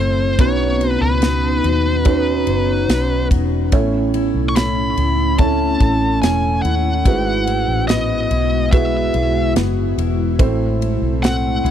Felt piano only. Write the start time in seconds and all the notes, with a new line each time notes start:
Already playing: C4 E4 A4 C5
0.39 B2 C#4 D#4 F#4 B4
2.05 C#4 D#4 F#4 B4
3.72 A2 C#4 E4 A4 C#5
5.39 C#4 E4 A4 C#5
7.06 G#2 E4 F#4 G#4 B4
8.72 E4 F#4 G#4 B4
10.39 A2 C4 E4 A4 C5